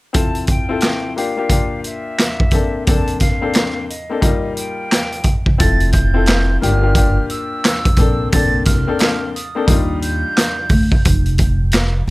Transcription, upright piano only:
0.13 0.64 C4 medium
0.13 0.64 E4 medium
0.13 0.65 F4 medium
0.13 0.65 A4 medium
0.69 1.13 C4 medium
0.69 1.13 E4 medium
0.69 1.14 F4 medium
0.69 1.14 A4 loud
1.16 1.35 A#3 medium
1.16 1.36 D4 medium
1.16 1.36 F4 medium
1.16 1.37 G4 loud
1.36 1.48 A#3 medium
1.36 1.49 D4 medium
1.36 1.49 F4 medium
1.36 1.50 G4 medium
1.50 2.51 A#3 medium
1.50 2.52 D4 medium
1.50 2.53 F4 medium
1.50 2.54 G4 medium
2.52 2.85 A#3 medium
2.52 2.85 C4 medium
2.52 2.85 D4 medium
2.52 2.86 A4 loud
2.87 3.37 A#3 medium
2.87 3.38 C4 medium
2.87 3.38 D4 medium
2.87 3.38 A4 loud
3.41 3.86 A#3 medium
3.41 3.86 C4 medium
3.41 3.86 D4 medium
3.41 3.87 A4 loud
4.10 4.20 A#3 medium
4.10 4.27 C4 medium
4.10 4.27 D4 medium
4.10 4.28 A4 loud
4.21 5.19 G3 loud
4.21 5.19 A#3 medium
4.21 5.19 D#4 medium
4.21 5.19 F4 loud
5.58 6.09 C4 medium
5.58 6.10 E4 medium
5.58 6.10 F4 medium
5.58 6.10 A4 loud
6.14 6.58 C4 loud
6.14 6.59 E4 medium
6.14 6.59 F4 medium
6.14 6.59 A4 loud
6.61 6.80 A#3 loud
6.61 6.81 D4 medium
6.61 6.81 F4 medium
6.61 6.82 G4 loud
6.82 6.93 A#3 medium
6.82 6.94 D4 medium
6.82 6.95 F4 medium
6.82 6.95 G4 loud
6.95 7.96 A#3 medium
6.95 7.98 D4 medium
6.95 7.99 F4 medium
6.95 7.99 G4 loud
7.98 8.30 A#3 medium
7.98 8.31 C4 medium
7.98 8.31 D4 medium
7.98 8.31 A4 loud
8.33 8.83 A#3 medium
8.33 8.83 C4 medium
8.33 8.84 D4 medium
8.33 8.84 A4 loud
8.87 9.31 A#3 medium
8.87 9.32 C4 medium
8.87 9.32 D4 medium
8.87 9.32 A4 loud
9.55 9.72 A#3 medium
9.55 9.72 C4 medium
9.55 9.66 D4 medium
9.55 9.73 A4 loud
9.67 10.64 G3 loud
9.67 10.64 D4 medium
9.67 10.65 D#4 medium
9.67 10.65 F4 loud

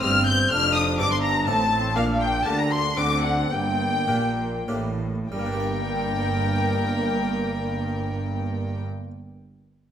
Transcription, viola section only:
0.00 0.49 C4 medium
0.51 1.48 D4 medium
1.47 1.70 C4 medium
1.72 1.95 C4 medium
1.96 2.44 D4 medium
2.45 2.96 D4 medium
2.97 3.51 C4 medium
3.51 5.05 A#3 medium
5.31 8.82 A#3 medium

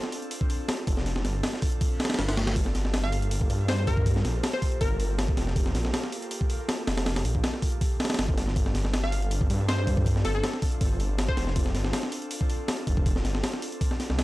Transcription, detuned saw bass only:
0.87 1.23 F1 medium
1.25 1.42 G1 loud
2.19 2.55 G1 loud
2.56 3.48 G1 loud
3.50 4.23 G2 loud
4.25 4.42 A#1 loud
4.81 5.27 G1 medium
5.37 5.73 F1 loud
5.75 5.92 A#1 loud
6.87 7.23 F1 medium
7.25 7.42 A#1 loud
8.19 8.55 G1 loud
8.56 9.48 G1 loud
9.50 10.23 G2 loud
10.25 10.42 G1 loud
10.81 11.27 G1 medium
11.37 11.73 F1 loud
11.75 11.92 G1 loud
12.87 13.23 F1 medium
13.25 13.42 G1 loud
14.10 14.24 C2 medium

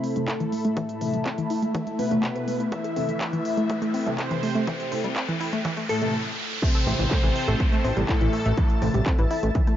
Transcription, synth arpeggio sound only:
0.04 0.10 C4 medium
0.16 0.20 G3 medium
0.28 0.32 E4 medium
0.41 0.47 E3 loud
0.53 0.59 A3 medium
0.65 0.74 A3 loud
0.77 0.81 E3 loud
1.01 1.08 C4 medium
1.14 1.17 G3 medium
1.26 1.35 C4 medium
1.38 1.44 E3 loud
1.50 1.57 E4 medium
1.63 1.69 A3 medium
1.75 1.78 E3 loud
1.87 1.93 A3 medium
1.99 2.05 C4 medium
2.23 2.33 A3 medium
2.36 2.42 C5 medium
2.48 2.54 A3 medium
2.60 2.66 E4 medium
2.72 2.78 A3 medium
2.84 2.91 A4 medium
2.96 3.03 C4 medium
3.09 3.15 E3 medium
3.21 3.25 A3 medium
3.33 3.39 E3 loud
3.58 3.67 A3 loud
3.70 3.76 A3 medium
3.82 3.86 A3 loud
3.94 4.00 C4 medium
4.06 4.10 G3 medium
4.18 4.22 E4 medium
4.31 4.37 E3 loud
4.43 4.49 A3 medium
4.55 4.65 A3 loud
4.67 4.71 E3 loud
4.92 4.98 C4 medium
5.04 5.08 G3 medium
5.16 5.26 C4 medium
5.28 5.35 E3 loud
5.40 5.47 E4 medium
5.53 5.59 A3 medium
5.65 5.69 E3 loud
5.77 5.83 A3 medium
5.89 5.96 A4 loud
6.62 6.69 A3 medium
6.62 6.69 A4 medium
6.75 6.81 A4 medium
6.75 6.81 A5 medium
6.87 6.93 C4 medium
6.87 6.93 C5 medium
6.99 7.05 E3 medium
6.99 7.05 E4 medium
7.11 7.15 A3 medium
7.11 7.15 A4 medium
7.24 7.30 E3 loud
7.24 7.30 E4 medium
7.48 7.57 A3 loud
7.48 7.57 A4 medium
7.60 7.66 A3 medium
7.60 7.66 A4 medium
7.72 7.76 A3 loud
7.72 7.76 A4 medium
7.84 7.91 C4 medium
7.84 7.91 C5 medium
7.97 8.00 G3 medium
7.97 8.00 G4 medium
8.09 8.13 E4 medium
8.09 8.13 E5 medium
8.21 8.27 E3 loud
8.21 8.27 E4 medium
8.33 8.40 A3 medium
8.33 8.40 A4 medium
8.46 8.55 A3 loud
8.46 8.55 A4 medium
8.58 8.61 E3 loud
8.58 8.61 E4 medium
8.82 8.88 C4 medium
8.82 8.88 C5 medium
8.94 8.98 G3 medium
8.94 8.98 G4 medium
9.06 9.16 C4 medium
9.06 9.16 C5 medium
9.19 9.25 E3 loud
9.19 9.25 E4 medium
9.31 9.37 E4 medium
9.31 9.37 E5 medium
9.43 9.49 A3 medium
9.43 9.49 A4 medium
9.55 9.59 E3 loud
9.55 9.59 E4 medium
9.68 9.74 A3 medium
9.68 9.74 A4 medium

